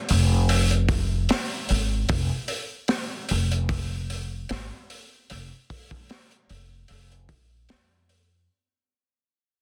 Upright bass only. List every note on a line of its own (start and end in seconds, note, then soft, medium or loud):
0.10 1.26 F1 loud
1.70 2.05 G#1 medium
2.10 2.29 F1 medium
3.31 4.46 F1 medium
4.51 4.69 G#1 medium
5.31 5.49 F1 medium
6.50 6.90 F1 medium
6.90 7.25 F1 medium
7.29 7.65 A#1 medium
7.70 8.46 F2 medium